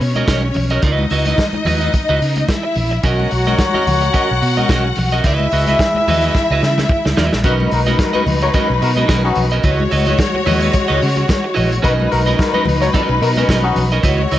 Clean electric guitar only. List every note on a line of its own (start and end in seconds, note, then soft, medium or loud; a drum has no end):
0.01 muted clean electric guitar stroke soft
0.16 0.26 C#4 soft
0.16 0.27 F#4 medium
0.16 0.27 A#4 medium
0.16 0.28 D#5 medium
0.27 0.46 C#4 medium
0.27 0.44 F#4 medium
0.27 0.43 A#4 medium
0.27 0.42 D#5 medium
0.43 muted clean electric guitar stroke medium
0.55 muted clean electric guitar stroke soft
0.71 0.83 C#4 medium
0.71 0.83 F#4 medium
0.71 0.83 A#4 medium
0.71 0.83 D#5 medium
0.83 1.04 E4 medium
0.83 1.04 F#4 medium
0.83 1.05 B4 medium
0.83 1.05 D#5 medium
1.11 1.26 E4 medium
1.11 1.26 F#4 medium
1.11 1.26 B4 medium
1.11 1.26 D#5 medium
1.27 1.38 E4 medium
1.27 1.39 F#4 soft
1.27 1.39 B4 medium
1.27 1.38 D#5 medium
1.40 muted clean electric guitar stroke soft
1.54 muted clean electric guitar stroke soft
1.66 1.82 E4 medium
1.66 1.81 F#4 medium
1.66 1.80 B4 medium
1.66 1.80 D#5 medium
1.81 1.92 E4 medium
1.81 1.93 F#4 medium
1.81 1.93 B4 medium
1.81 1.93 D#5 medium
1.94 muted clean electric guitar stroke soft
2.09 2.19 E4 medium
2.09 2.20 F#4 medium
2.09 2.21 B4 medium
2.09 2.21 D#5 medium
2.21 muted clean electric guitar stroke soft
2.37 muted clean electric guitar stroke soft
2.49 muted clean electric guitar stroke soft
2.63 muted clean electric guitar stroke medium
2.91 muted clean electric guitar stroke soft
3.04 3.30 C#4 medium
3.04 3.30 F#4 medium
3.04 3.30 A#4 medium
3.04 3.31 D#5 medium
3.31 muted clean electric guitar stroke soft
3.47 3.58 C#4 soft
3.47 3.59 F#4 medium
3.47 3.59 A#4 medium
3.47 3.59 D#5 medium
3.59 muted clean electric guitar stroke soft
3.74 3.85 C#4 medium
3.74 3.86 F#4 medium
3.74 3.86 A#4 medium
3.74 3.87 D#5 medium
3.86 muted clean electric guitar stroke soft
4.02 muted clean electric guitar stroke soft
4.13 4.32 C#4 medium
4.13 4.30 F#4 medium
4.13 4.29 A#4 medium
4.13 4.28 D#5 medium
4.30 muted clean electric guitar stroke soft
4.42 muted clean electric guitar stroke soft
4.57 4.69 C#4 soft
4.57 4.69 F#4 soft
4.57 4.69 A#4 medium
4.57 4.69 D#5 medium
4.70 4.88 C#4 medium
4.70 4.85 F#4 medium
4.70 4.85 A#4 medium
4.70 4.84 D#5 medium
4.85 muted clean electric guitar stroke medium
4.98 muted clean electric guitar stroke soft
5.12 5.24 C#4 medium
5.12 5.24 F#4 medium
5.12 5.24 A#4 medium
5.12 5.24 D#5 medium
5.25 5.46 E4 medium
5.25 5.46 F#4 medium
5.25 5.46 B4 medium
5.25 5.46 D#5 medium
5.52 5.67 E4 medium
5.52 5.67 F#4 medium
5.52 5.67 B4 medium
5.52 5.66 D#5 medium
5.67 5.79 E4 medium
5.67 5.79 F#4 medium
5.67 5.79 B4 medium
5.67 5.79 D#5 medium
5.81 muted clean electric guitar stroke soft
5.96 muted clean electric guitar stroke soft
6.08 6.25 E4 loud
6.08 6.24 F#4 medium
6.08 6.23 B4 medium
6.08 6.22 D#5 loud
6.23 6.34 E4 soft
6.23 6.35 F#4 medium
6.23 6.35 B4 medium
6.23 6.35 D#5 medium
6.35 muted clean electric guitar stroke soft
6.51 6.62 E4 medium
6.51 6.62 F#4 medium
6.51 6.63 B4 medium
6.51 6.63 D#5 medium
6.78 muted clean electric guitar stroke soft
6.91 muted clean electric guitar stroke soft
7.05 muted clean electric guitar stroke soft
7.17 7.38 E4 medium
7.17 7.33 F#4 medium
7.17 7.32 B4 medium
7.17 7.32 D#5 medium
7.33 muted clean electric guitar stroke soft
7.45 7.70 C#4 loud
7.45 7.71 F#4 medium
7.45 7.71 A#4 medium
7.45 7.71 D#5 medium
7.72 muted clean electric guitar stroke soft
7.87 7.97 C#4 medium
7.87 7.98 F#4 medium
7.87 7.98 A#4 medium
7.87 7.99 D#5 medium
7.98 muted clean electric guitar stroke soft
8.13 8.25 C#4 medium
8.13 8.26 F#4 medium
8.13 8.26 A#4 medium
8.13 8.27 D#5 medium
8.26 muted clean electric guitar stroke soft
8.43 muted clean electric guitar stroke medium
8.54 8.72 C#4 medium
8.54 8.70 F#4 loud
8.54 8.69 A#4 loud
8.54 8.68 D#5 medium
8.70 muted clean electric guitar stroke medium
8.81 muted clean electric guitar stroke soft
8.97 9.07 C#4 soft
8.97 9.08 F#4 soft
8.97 9.08 A#4 medium
8.97 9.09 D#5 medium
9.08 9.27 C#4 medium
9.08 9.24 F#4 medium
9.08 9.24 A#4 medium
9.08 9.23 D#5 medium
9.24 muted clean electric guitar stroke medium
9.37 muted clean electric guitar stroke soft
9.52 9.63 C#4 medium
9.52 9.63 F#4 medium
9.52 9.64 A#4 medium
9.52 9.63 D#5 medium
9.64 9.82 E4 medium
9.64 9.82 F#4 medium
9.64 9.82 B4 medium
9.64 9.83 D#5 medium
9.91 10.06 E4 medium
9.91 10.06 F#4 medium
9.91 10.07 B4 medium
9.91 10.05 D#5 medium
10.07 10.18 E4 medium
10.07 10.18 F#4 medium
10.07 10.19 B4 medium
10.07 10.18 D#5 medium
10.19 muted clean electric guitar stroke soft
10.35 muted clean electric guitar stroke medium
10.46 10.63 E4 medium
10.46 10.62 F#4 medium
10.46 10.62 B4 loud
10.46 10.61 D#5 loud
10.62 10.73 E4 medium
10.62 10.73 F#4 medium
10.62 10.74 B4 medium
10.62 10.74 D#5 medium
10.74 muted clean electric guitar stroke soft
10.88 11.00 E4 medium
10.88 11.00 F#4 medium
10.88 11.01 B4 medium
10.88 11.01 D#5 medium
11.17 muted clean electric guitar stroke soft
11.29 muted clean electric guitar stroke soft
11.44 muted clean electric guitar stroke medium
11.54 11.73 E4 medium
11.54 11.71 F#4 medium
11.54 11.71 B4 loud
11.54 11.70 D#5 medium
11.71 muted clean electric guitar stroke soft
11.82 12.08 C#4 medium
11.82 12.09 F#4 medium
11.82 12.09 A#4 medium
11.82 12.09 D#5 loud
12.10 muted clean electric guitar stroke medium
12.26 12.38 C#4 soft
12.26 12.38 F#4 medium
12.26 12.38 A#4 medium
12.26 12.38 D#5 medium
12.39 muted clean electric guitar stroke soft
12.54 12.65 C#4 medium
12.54 12.66 F#4 medium
12.54 12.66 A#4 medium
12.54 12.67 D#5 medium
12.66 muted clean electric guitar stroke soft
12.82 muted clean electric guitar stroke medium
12.94 13.14 C#4 medium
12.94 13.09 F#4 medium
12.94 13.09 A#4 medium
12.94 13.08 D#5 medium
13.09 muted clean electric guitar stroke medium
13.22 muted clean electric guitar stroke soft
13.37 13.48 C#4 medium
13.37 13.49 F#4 soft
13.37 13.49 A#4 medium
13.37 13.48 D#5 medium
13.49 13.67 C#4 medium
13.49 13.66 F#4 medium
13.49 13.65 A#4 medium
13.49 13.64 D#5 medium
13.65 muted clean electric guitar stroke soft
13.77 muted clean electric guitar stroke soft
13.92 14.03 C#4 medium
13.92 14.03 F#4 medium
13.92 14.03 A#4 medium
13.92 14.03 D#5 medium
14.03 14.21 E4 medium
14.03 14.22 F#4 medium
14.03 14.22 B4 medium
14.03 14.22 D#5 loud
14.32 14.39 E4 medium
14.32 14.39 F#4 medium
14.32 14.39 B4 medium
14.32 14.39 D#5 medium